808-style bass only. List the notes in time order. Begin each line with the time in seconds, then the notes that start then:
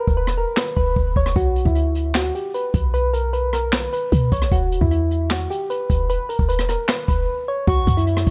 0.08 E1
0.77 E1
0.96 E1
1.16 E1
1.36 B1
1.65 D2
2.74 B1
4.12 B2
4.32 B1
4.52 E1
4.81 E2
5.90 E1
6.39 E1
7.08 E1
7.67 B1
7.87 F#2
8.27 B1